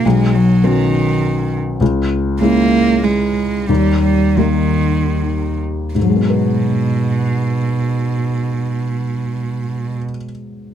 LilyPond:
<<
  \new Staff \with { instrumentName = "Felt piano" } { \time 3/4 \key gis \minor \tempo 4 = 80 b,,4 <b cis' fis'>2 | cis,4 <gis cis' e'>2 | dis,4 <g ais dis'>2 | <gis, fis gis b dis' b'>2.~ |
<gis, fis gis b dis' b'>2. | }
  \new Staff \with { instrumentName = "Cello" } { \clef bass \time 3/4 \key gis \minor gis8 fis8 dis4. r8 | r4 ais4 gis4 | g8 g8 dis4. r8 | b,2.~ |
b,2. | }
>>